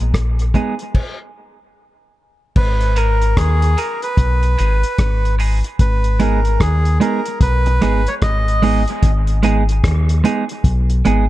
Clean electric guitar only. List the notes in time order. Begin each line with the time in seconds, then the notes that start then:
0.54 G#3 B3 D#4 G#4
2.96 G#3 B3 D#4 G#4
3.77 G#3 B3 D#4 G#4
4.43 muted clean electric guitar stroke
4.58 G#3 B3 D#4 G#4
5.39 G#3 B3 D#4 G#4
6.20 G#3 B3 D#4 G#4
7.00 G#3 B3 D#4 G#4
7.67 muted clean electric guitar stroke
7.81 G#3 B3 D#4 G#4
8.62 G#3 B3 D#4 G#4
9.43 G#3 B3 D#4 G#4
10.24 G#3 B3 D#4 G#4
11.05 G#3 B3 D#4 G#4